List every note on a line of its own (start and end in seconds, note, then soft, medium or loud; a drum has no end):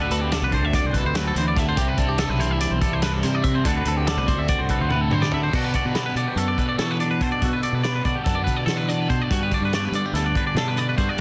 0.00 0.50 D3 medium
0.00 1.14 D3 medium
0.00 0.51 A3 medium
0.00 0.53 C4 loud
0.00 0.52 D4 medium
0.00 0.53 F#4 medium
0.00 0.11 B4 medium
0.11 0.40 D2 medium
0.11 0.21 A4 medium
0.11 0.31 B4 medium
0.11 closed hi-hat medium
0.21 0.32 G4 medium
0.32 0.43 A4 medium
0.32 0.93 D5 medium
0.32 snare loud
0.32 closed hi-hat medium
0.42 0.63 C2 medium
0.42 0.54 B4 medium
0.51 1.13 D3 medium
0.51 1.14 A3 medium
0.51 1.15 C4 medium
0.51 1.79 D4 medium
0.51 1.13 F#4 medium
0.51 0.65 C5 medium
0.51 kick medium
0.51 closed hi-hat medium
0.63 0.83 D2 medium
0.63 0.74 E5 medium
0.73 1.76 F#4 medium
0.73 0.86 D5 medium
0.73 kick loud
0.73 snare soft
0.73 closed hi-hat medium
0.84 1.03 C2 medium
0.84 0.96 C5 medium
0.93 1.05 A4 medium
0.93 1.79 B4 medium
0.93 kick medium
0.93 closed hi-hat medium
1.04 1.34 D2 medium
1.04 1.16 C5 medium
1.14 1.78 D3 medium
1.14 1.34 F#3 medium
1.14 1.77 A3 medium
1.14 1.79 C4 medium
1.14 1.76 F#4 medium
1.14 1.26 B4 medium
1.14 snare loud
1.14 closed hi-hat loud
1.27 1.37 A4 medium
1.34 1.75 D2 medium
1.34 1.56 E3 medium
1.34 1.47 C5 medium
1.34 closed hi-hat medium
1.48 1.58 D5 medium
1.56 1.77 D3 medium
1.56 1.68 E5 medium
1.56 kick medium
1.56 snare soft
1.56 closed hi-hat medium
1.69 1.78 C5 medium
1.76 1.97 C2 loud
1.76 2.40 C3 medium
1.76 2.39 C3 medium
1.76 2.41 E3 medium
1.76 2.39 G3 loud
1.76 2.39 C4 loud
1.76 1.88 G4 loud
1.76 kick loud
1.76 closed hi-hat loud
1.81 2.38 E4 loud
1.88 1.98 B4 medium
1.98 2.28 C2 medium
1.98 2.82 D4 medium
1.98 2.09 A4 medium
1.98 kick medium
1.98 closed hi-hat medium
2.09 2.19 G4 medium
2.18 3.66 E4 medium
2.18 2.29 A4 medium
2.18 snare loud
2.18 closed hi-hat loud
2.29 2.49 B1 medium
2.29 2.40 B4 medium
2.38 3.62 E3 medium
2.38 3.01 E3 medium
2.38 3.02 G3 medium
2.38 3.01 C4 medium
2.38 3.01 E4 medium
2.38 2.51 C5 medium
2.38 closed hi-hat medium
2.42 3.00 C3 medium
2.49 2.70 C2 medium
2.49 2.61 E5 medium
2.60 2.72 D5 medium
2.60 snare soft
2.60 closed hi-hat loud
2.71 2.91 B1 medium
2.71 2.81 C5 medium
2.81 3.66 D4 medium
2.81 2.93 A4 medium
2.81 kick medium
2.81 closed hi-hat medium
2.91 3.21 C2 medium
2.91 3.02 C5 medium
3.01 3.44 G2 medium
3.01 3.63 C3 medium
3.01 3.64 E3 medium
3.01 3.64 G3 medium
3.01 3.65 C4 medium
3.01 3.13 B4 medium
3.01 snare loud
3.01 closed hi-hat medium
3.05 3.65 E4 loud
3.13 3.23 A4 medium
3.23 3.63 C3 loud
3.23 3.35 C5 medium
3.23 snare soft
3.23 closed hi-hat medium
3.35 3.45 D5 medium
3.44 3.63 C3 medium
3.44 3.55 E5 medium
3.44 kick medium
3.44 closed hi-hat medium
3.55 3.65 C5 medium
3.64 3.85 D2 medium
3.64 4.26 D3 medium
3.64 5.31 D3 medium
3.64 4.27 A3 medium
3.64 4.28 C4 medium
3.64 4.26 D4 medium
3.64 4.48 F#4 medium
3.64 4.28 F#4 medium
3.64 3.76 A4 medium
3.64 3.86 B4 medium
3.64 kick loud
3.64 closed hi-hat medium
3.77 3.87 B4 medium
3.85 4.15 D2 medium
3.85 3.97 A4 medium
3.85 4.08 B4 medium
3.85 closed hi-hat medium
3.97 4.07 G4 medium
4.07 4.18 A4 medium
4.07 4.70 D5 medium
4.07 snare loud
4.07 closed hi-hat medium
4.17 4.38 C2 medium
4.17 4.28 B4 medium
4.27 4.89 D3 medium
4.27 4.89 A3 medium
4.27 4.90 C4 medium
4.27 5.50 D4 medium
4.27 4.88 F#4 medium
4.27 4.39 C5 medium
4.27 kick medium
4.27 closed hi-hat medium
4.38 4.58 D2 medium
4.38 4.49 E5 medium
4.48 5.51 F#4 medium
4.48 4.59 D5 medium
4.48 kick loud
4.48 closed hi-hat medium
4.59 4.79 C2 medium
4.59 4.69 C5 medium
4.69 4.81 A4 medium
4.69 5.51 B4 medium
4.69 kick medium
4.69 closed hi-hat medium
4.80 5.10 D2 medium
4.80 4.91 C5 medium
4.89 5.32 A2 medium
4.89 5.52 A3 medium
4.89 5.52 C4 medium
4.89 5.51 F#4 medium
4.89 5.01 B4 medium
4.89 high tom medium
4.93 5.51 D3 medium
5.01 5.13 A4 medium
5.11 5.50 D3 medium
5.11 5.23 C5 medium
5.11 mid tom medium
5.22 5.32 D5 medium
5.22 snare medium
5.31 5.53 D3 medium
5.31 5.43 E5 medium
5.31 floor tom medium
5.43 5.54 C5 medium
5.51 5.93 B2 medium
5.51 6.16 B2 medium
5.51 5.73 B2 loud
5.51 6.14 D3 medium
5.51 5.75 F#3 medium
5.51 5.74 B3 medium
5.51 7.02 D4 medium
5.51 5.71 D4 medium
5.51 5.65 F#4 medium
5.51 5.74 F#4 medium
5.51 kick loud
5.51 crash medium
5.56 5.95 A4 medium
5.64 5.74 B4 medium
5.72 5.96 B3 medium
5.72 5.97 D4 medium
5.72 6.17 F#4 medium
5.72 5.86 D5 medium
5.72 kick medium
5.72 closed hi-hat medium
5.76 5.94 F#3 medium
5.85 6.15 B2 medium
5.85 5.96 B4 medium
5.94 6.77 B2 medium
5.94 6.18 F#3 medium
5.94 6.16 B3 medium
5.94 6.15 D4 medium
5.94 6.37 B4 medium
5.94 6.06 D5 medium
5.94 snare medium
5.94 closed hi-hat medium
6.06 6.16 B4 medium
6.15 6.26 B2 medium
6.15 8.04 D3 medium
6.15 6.79 F#3 soft
6.15 6.80 B3 medium
6.15 6.81 D4 medium
6.15 6.81 F#4 soft
6.15 6.27 D5 medium
6.15 closed hi-hat medium
6.28 6.38 G4 medium
6.36 6.56 F#2 medium
6.36 7.21 A4 medium
6.36 6.48 A4 medium
6.36 closed hi-hat medium
6.48 6.58 D5 medium
6.58 7.20 B2 medium
6.58 6.68 B4 medium
6.58 kick medium
6.58 closed hi-hat medium
6.69 6.78 D5 medium
6.78 7.18 B2 medium
6.78 7.18 E3 medium
6.78 7.02 F#3 medium
6.78 7.00 B3 medium
6.78 6.98 D4 medium
6.78 7.63 F#4 medium
6.78 6.91 A4 medium
6.78 snare loud
6.78 closed hi-hat medium
6.91 7.00 B4 medium
6.98 7.20 F#3 medium
6.98 7.21 B3 medium
6.98 7.22 D4 medium
6.98 8.88 D4 medium
6.98 7.10 D5 medium
6.98 closed hi-hat soft
7.11 7.22 B4 medium
7.19 7.38 B2 medium
7.19 7.31 B2 medium
7.19 7.40 B2 medium
7.19 7.40 F#3 medium
7.19 7.42 B3 medium
7.19 7.43 D4 medium
7.19 7.40 A4 medium
7.19 7.32 C5 medium
7.19 kick medium
7.19 closed hi-hat medium
7.32 7.42 D5 medium
7.39 7.82 B2 medium
7.39 7.62 B2 medium
7.39 7.65 F#3 medium
7.39 7.63 B3 medium
7.39 7.61 D4 medium
7.39 7.53 F#4 medium
7.39 kick loud
7.39 closed hi-hat medium
7.44 8.06 B2 medium
7.44 7.84 A4 medium
7.53 7.63 B4 medium
7.62 7.84 F#3 medium
7.62 7.85 B3 medium
7.62 7.86 D4 medium
7.62 8.05 F#4 medium
7.62 7.74 D5 medium
7.62 closed hi-hat medium
7.72 8.03 B2 medium
7.72 7.83 B4 medium
7.83 8.25 B2 medium
7.83 8.08 F#3 medium
7.83 8.06 B3 medium
7.83 8.04 D4 medium
7.83 8.26 B4 medium
7.83 7.94 D5 medium
7.83 snare medium
7.83 closed hi-hat medium
7.95 8.05 B4 medium
8.04 8.15 B2 medium
8.04 9.93 D3 medium
8.04 8.67 F#3 soft
8.04 8.69 B3 medium
8.04 8.70 D4 medium
8.04 8.68 F#4 medium
8.04 8.15 D5 medium
8.04 kick medium
8.04 closed hi-hat medium
8.15 8.24 G4 medium
8.24 8.46 F#2 medium
8.24 8.35 A4 medium
8.24 9.10 A4 medium
8.24 kick loud
8.24 closed hi-hat medium
8.35 8.44 D5 medium
8.44 9.09 B2 medium
8.44 8.56 B4 medium
8.44 kick medium
8.44 closed hi-hat medium
8.56 8.66 D5 medium
8.66 9.07 B2 medium
8.66 9.07 E3 medium
8.66 8.91 F#3 medium
8.66 8.90 B3 medium
8.66 9.32 F#4 medium
8.66 8.77 A4 medium
8.66 snare loud
8.66 closed hi-hat medium
8.71 8.88 D4 medium
8.77 8.89 B4 medium
8.88 9.09 F#3 medium
8.88 9.10 B3 medium
8.88 9.12 D4 medium
8.88 9.53 D4 medium
8.88 9.00 D5 medium
8.88 closed hi-hat medium
9.00 9.10 B4 medium
9.08 9.29 B2 medium
9.08 9.20 B2 medium
9.08 9.28 B2 medium
9.08 9.31 F#3 medium
9.08 9.32 B3 medium
9.08 9.33 D4 medium
9.08 9.29 A4 medium
9.08 9.22 C5 medium
9.08 kick medium
9.08 closed hi-hat medium
9.22 9.31 D5 medium
9.30 9.72 G2 medium
9.30 9.50 G2 loud
9.30 10.98 G2 medium
9.30 9.72 D3 medium
9.30 9.55 G3 medium
9.30 9.53 B3 medium
9.30 9.51 D4 medium
9.30 9.42 F#4 medium
9.30 9.74 F#4 medium
9.30 kick loud
9.30 closed hi-hat medium
9.43 9.52 B4 medium
9.51 9.74 B3 medium
9.51 9.75 D4 medium
9.51 9.94 D4 medium
9.51 9.63 D5 medium
9.51 kick medium
9.51 closed hi-hat medium
9.55 9.74 G3 medium
9.61 9.91 G2 medium
9.65 9.74 B4 medium
9.72 10.96 G2 medium
9.72 10.15 D3 medium
9.72 9.96 G3 loud
9.72 9.94 B3 medium
9.72 9.92 D4 medium
9.72 10.13 F#4 medium
9.72 9.85 D5 medium
9.72 snare loud
9.72 closed hi-hat medium
9.85 9.94 B4 medium
9.92 10.34 D3 medium
9.92 10.02 G3 medium
9.92 10.06 B3 soft
9.92 10.56 B3 medium
9.92 10.58 D4 medium
9.92 10.05 D5 medium
9.92 closed hi-hat medium
9.96 10.55 G3 soft
10.06 10.55 D4 soft
10.06 10.15 G4 medium
10.13 10.33 D2 medium
10.13 10.24 E4 medium
10.13 10.26 A4 medium
10.13 snare soft
10.13 closed hi-hat medium
10.24 10.98 F#4 soft
10.24 10.36 D5 medium
10.35 11.17 D3 medium
10.35 10.47 B4 medium
10.35 kick medium
10.35 closed hi-hat medium
10.47 10.57 D5 medium
10.54 10.95 B2 medium
10.54 10.96 D3 medium
10.54 10.79 G3 medium
10.54 10.77 B3 medium
10.54 11.21 D4 medium
10.54 10.75 D4 medium
10.54 10.68 A4 medium
10.54 snare loud
10.54 closed hi-hat medium
10.68 10.78 B4 medium
10.76 11.16 B3 medium
10.76 10.97 B3 medium
10.76 10.99 D4 medium
10.76 10.88 D5 medium
10.76 closed hi-hat medium
10.80 10.97 G3 soft
10.89 10.97 B4 medium
10.96 11.16 G2 medium
10.96 11.08 G2 medium
10.96 11.17 G2 medium
10.96 11.18 D3 medium
10.96 11.18 G3 medium
10.96 11.19 B3 medium
10.96 11.21 D4 medium
10.96 11.20 F#4 soft
10.96 11.09 C5 medium
10.96 kick medium
10.96 closed hi-hat medium
11.09 11.19 D5 medium
11.18 11.21 G2 medium
11.18 closed hi-hat medium